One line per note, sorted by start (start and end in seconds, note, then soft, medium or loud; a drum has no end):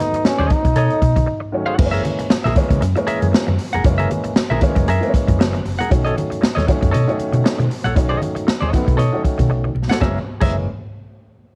0.00 0.35 D#3 medium
0.00 0.35 F#3 medium
0.00 0.36 A3 medium
0.00 0.36 B3 medium
0.00 0.28 D#4 loud
0.00 muted clean electric guitar stroke soft
0.00 snare soft
0.00 closed hi-hat medium
0.00 high conga medium
0.13 muted fingered electric bass stroke medium
0.13 muted clean electric guitar stroke soft
0.13 closed hi-hat medium
0.25 0.54 C#4 medium
0.25 muted fingered electric bass stroke soft
0.25 muted clean electric guitar stroke soft
0.25 snare loud
0.39 0.48 D#2 medium
0.39 0.50 A4 medium
0.39 0.51 C#5 medium
0.39 0.51 D#5 medium
0.39 high conga medium
0.39 low conga medium
0.50 1.54 D#4 medium
0.50 kick loud
0.50 closed hi-hat medium
0.50 high conga medium
0.65 0.74 B1 medium
0.65 muted clean electric guitar stroke soft
0.65 kick loud
0.65 closed hi-hat soft
0.76 0.87 B2 medium
0.76 1.00 A4 medium
0.76 1.01 C#5 medium
0.76 1.01 D#5 medium
0.76 closed hi-hat medium
0.76 muted conga soft
0.90 closed hi-hat soft
1.02 1.13 B2 loud
1.02 muted clean electric guitar stroke soft
1.02 kick medium
1.02 closed hi-hat medium
1.16 1.25 B1 loud
1.16 muted clean electric guitar stroke soft
1.16 kick medium
1.16 closed hi-hat medium
1.16 high conga medium
1.27 muted clean electric guitar stroke soft
1.40 muted clean electric guitar stroke soft
1.52 1.70 D#3 medium
1.52 1.70 F#3 medium
1.52 1.70 A3 medium
1.52 1.71 C#4 medium
1.66 1.77 A4 medium
1.66 1.78 C#5 medium
1.66 1.78 F#5 medium
1.78 2.00 F#1 medium
1.78 2.25 E3 medium
1.78 2.25 G#3 medium
1.78 2.26 A#3 medium
1.78 1.87 C4 medium
1.78 muted clean electric guitar stroke soft
1.78 kick loud
1.78 crash loud
1.78 muted conga soft
1.78 low conga medium
1.86 2.29 C#4 loud
1.91 2.03 G#4 medium
1.91 2.04 A#4 medium
1.91 2.04 E5 medium
1.91 closed hi-hat soft
2.04 muted clean electric guitar stroke soft
2.04 closed hi-hat medium
2.04 muted conga soft
2.04 high conga medium
2.19 muted clean electric guitar stroke soft
2.19 muted fingered electric bass stroke soft
2.19 closed hi-hat medium
2.30 muted clean electric guitar stroke soft
2.30 muted fingered electric bass stroke soft
2.30 snare loud
2.44 2.54 A#1 loud
2.44 2.54 G#4 medium
2.44 2.56 A#4 medium
2.44 2.56 E5 medium
2.44 snare soft
2.44 high conga medium
2.44 low conga medium
2.55 2.79 E3 medium
2.55 2.79 G#3 medium
2.55 2.80 A#3 medium
2.55 2.80 C#4 loud
2.55 muted clean electric guitar stroke soft
2.55 kick loud
2.55 closed hi-hat medium
2.55 high conga medium
2.69 2.79 C#2 medium
2.69 muted clean electric guitar stroke soft
2.69 kick loud
2.69 closed hi-hat medium
2.81 2.93 F#2 loud
2.81 muted clean electric guitar stroke soft
2.81 closed hi-hat medium
2.81 muted conga soft
2.96 3.49 E3 medium
2.96 3.50 G#3 medium
2.96 3.50 A#3 medium
2.96 3.50 C#4 loud
2.96 muted clean electric guitar stroke medium
2.96 closed hi-hat soft
3.07 3.26 G#4 medium
3.07 3.21 A#4 medium
3.07 3.20 E5 loud
3.07 muted fingered electric bass stroke soft
3.07 closed hi-hat medium
3.21 3.31 F#2 medium
3.21 muted clean electric guitar stroke medium
3.21 closed hi-hat medium
3.21 high conga medium
3.32 muted clean electric guitar stroke soft
3.32 snare loud
3.32 muted conga soft
3.47 3.57 F#2 medium
3.47 muted clean electric guitar stroke soft
3.47 high conga medium
3.59 open hi-hat medium
3.73 3.82 F1 medium
3.73 3.83 G#4 medium
3.73 3.84 A#4 medium
3.73 3.85 F#5 medium
3.73 closed hi-hat medium
3.73 low conga medium
3.84 4.05 F#1 loud
3.84 4.31 E3 medium
3.84 4.31 G#3 medium
3.84 4.31 A#3 medium
3.84 4.32 C#4 medium
3.84 kick loud
3.84 closed hi-hat medium
3.84 muted conga soft
3.84 low conga medium
3.98 4.08 G#4 medium
3.98 4.10 A#4 medium
3.98 4.10 E5 medium
3.98 closed hi-hat soft
4.10 muted clean electric guitar stroke soft
4.10 closed hi-hat medium
4.10 high conga medium
4.24 muted clean electric guitar stroke soft
4.24 muted fingered electric bass stroke soft
4.24 closed hi-hat medium
4.36 muted fingered electric bass stroke soft
4.36 muted clean electric guitar stroke soft
4.36 snare loud
4.50 4.59 A#1 medium
4.50 4.60 G#4 medium
4.50 4.61 A#4 medium
4.50 4.62 E5 medium
4.50 high conga medium
4.50 low conga medium
4.61 4.85 E3 medium
4.61 4.85 G#3 medium
4.61 4.85 A#3 medium
4.61 4.86 C#4 loud
4.61 muted clean electric guitar stroke soft
4.61 kick medium
4.61 closed hi-hat medium
4.61 high conga medium
4.75 4.85 F#1 loud
4.75 muted clean electric guitar stroke soft
4.75 kick medium
4.75 closed hi-hat medium
4.88 4.99 F#2 loud
4.88 5.12 G#4 medium
4.88 5.12 A#4 loud
4.88 5.12 E5 loud
4.88 closed hi-hat medium
4.88 muted conga soft
5.01 5.54 E3 medium
5.01 5.55 G#3 medium
5.01 5.55 A#3 medium
5.01 5.08 C4 medium
5.01 closed hi-hat soft
5.09 5.59 C#4 loud
5.14 muted fingered electric bass stroke medium
5.14 muted clean electric guitar stroke soft
5.14 kick medium
5.14 closed hi-hat medium
5.27 5.37 F#2 loud
5.27 muted clean electric guitar stroke soft
5.27 kick medium
5.27 closed hi-hat medium
5.27 high conga medium
5.39 5.60 F#1 loud
5.39 muted clean electric guitar stroke soft
5.39 snare loud
5.39 muted conga soft
5.53 muted clean electric guitar stroke soft
5.53 closed hi-hat soft
5.53 high conga medium
5.65 5.76 F#1 medium
5.65 open hi-hat medium
5.65 muted conga soft
5.79 5.91 G#4 medium
5.79 5.91 A#4 medium
5.79 5.92 F#5 medium
5.79 closed hi-hat soft
5.79 low conga medium
5.90 6.11 B1 loud
5.90 6.36 D#3 medium
5.90 6.37 F#3 medium
5.90 6.37 A3 medium
5.90 6.37 C#4 loud
5.90 muted clean electric guitar stroke soft
5.90 kick loud
5.90 closed hi-hat loud
5.90 muted conga soft
5.90 low conga medium
6.04 6.15 A4 medium
6.04 6.16 C#5 medium
6.04 6.16 D#5 medium
6.04 closed hi-hat soft
6.16 muted clean electric guitar stroke soft
6.16 closed hi-hat medium
6.16 muted conga soft
6.16 high conga medium
6.30 muted clean electric guitar stroke soft
6.30 muted fingered electric bass stroke soft
6.30 closed hi-hat medium
6.41 muted clean electric guitar stroke soft
6.41 muted fingered electric bass stroke medium
6.41 snare loud
6.55 6.65 D#2 medium
6.55 6.66 A4 medium
6.55 6.66 C#5 medium
6.55 6.67 D#5 medium
6.55 snare soft
6.55 closed hi-hat soft
6.55 high conga medium
6.55 low conga medium
6.67 6.91 D#3 medium
6.67 6.91 F#3 medium
6.67 6.91 A3 medium
6.67 6.91 C#4 loud
6.67 muted clean electric guitar stroke medium
6.67 kick loud
6.67 closed hi-hat medium
6.67 muted conga soft
6.67 high conga medium
6.81 6.91 F#2 medium
6.81 muted clean electric guitar stroke soft
6.81 kick loud
6.81 closed hi-hat medium
6.91 7.05 B2 loud
6.91 7.16 A4 medium
6.91 7.17 C#5 medium
6.91 7.17 D#5 medium
6.91 closed hi-hat medium
6.95 muted conga soft
7.08 7.61 D#3 medium
7.08 7.61 F#3 medium
7.08 7.61 A3 medium
7.08 7.61 C#4 loud
7.08 closed hi-hat soft
7.18 muted clean electric guitar stroke soft
7.18 muted fingered electric bass stroke soft
7.18 closed hi-hat medium
7.32 7.42 B2 medium
7.32 muted clean electric guitar stroke soft
7.32 closed hi-hat soft
7.32 high conga medium
7.44 muted clean electric guitar stroke soft
7.44 snare loud
7.59 7.68 B2 medium
7.59 muted clean electric guitar stroke soft
7.59 closed hi-hat soft
7.59 high conga medium
7.71 open hi-hat medium
7.71 muted conga soft
7.84 7.96 A#1 medium
7.84 7.94 A4 medium
7.84 7.95 C#5 medium
7.84 7.96 F#5 medium
7.84 closed hi-hat medium
7.84 low conga medium
7.95 8.16 B1 loud
7.95 8.42 D#3 medium
7.95 8.43 F#3 medium
7.95 8.43 A3 medium
7.95 8.43 C#4 medium
7.95 muted clean electric guitar stroke soft
7.95 kick loud
7.95 closed hi-hat loud
7.95 muted conga soft
7.95 low conga medium
8.09 8.19 A4 medium
8.09 8.20 C#5 medium
8.09 8.21 D#5 loud
8.21 muted clean electric guitar stroke soft
8.21 closed hi-hat medium
8.21 muted conga soft
8.21 high conga medium
8.35 muted clean electric guitar stroke medium
8.35 muted fingered electric bass stroke soft
8.35 closed hi-hat medium
8.47 muted clean electric guitar stroke soft
8.47 muted fingered electric bass stroke soft
8.47 snare loud
8.47 muted conga soft
8.61 8.70 D#2 medium
8.61 8.71 A4 medium
8.61 8.72 C#5 medium
8.61 8.72 D#5 medium
8.61 high conga medium
8.61 low conga medium
8.72 8.96 D#3 medium
8.72 8.96 F#3 medium
8.72 8.97 A3 medium
8.72 8.97 B3 loud
8.72 muted clean electric guitar stroke soft
8.72 kick loud
8.72 closed hi-hat medium
8.72 muted conga soft
8.72 high conga medium
8.85 8.96 B1 medium
8.85 muted clean electric guitar stroke soft
8.85 kick loud
8.85 closed hi-hat soft
8.97 9.10 B2 medium
8.97 9.22 A4 medium
8.97 9.22 C#5 medium
8.97 9.23 D#5 medium
8.97 closed hi-hat medium
8.97 muted conga soft
9.13 9.66 D#3 medium
9.13 9.66 F#3 medium
9.13 9.67 A3 medium
9.13 9.67 C#4 medium
9.24 muted clean electric guitar stroke soft
9.24 muted fingered electric bass stroke soft
9.24 kick medium
9.24 closed hi-hat medium
9.24 muted conga soft
9.38 9.48 B2 medium
9.38 muted clean electric guitar stroke soft
9.38 kick medium
9.38 closed hi-hat medium
9.38 high conga medium
9.49 9.70 B1 loud
9.49 muted clean electric guitar stroke medium
9.64 muted clean electric guitar stroke soft
9.64 high conga medium
9.75 9.86 B1 medium
9.75 muted conga soft
9.90 10.00 A4 medium
9.90 10.01 C#5 medium
9.90 10.01 F#5 medium
9.90 snare medium
9.90 low conga medium
10.00 10.17 F#1 loud
10.00 10.17 E3 medium
10.00 10.17 G#3 medium
10.00 10.17 A#3 medium
10.00 10.17 C#4 medium
10.00 10.18 G#4 medium
10.00 10.18 A#4 medium
10.00 10.18 E5 loud
10.00 kick loud
10.00 snare medium
10.00 high conga medium
10.41 10.65 F#1 medium
10.41 10.66 E3 medium
10.41 10.66 G#3 medium
10.41 10.66 A#3 medium
10.41 10.66 C#4 medium
10.41 10.55 G#4 medium
10.41 10.56 A#4 medium
10.41 10.56 E5 loud
10.41 kick loud
10.41 crash medium
10.41 high conga medium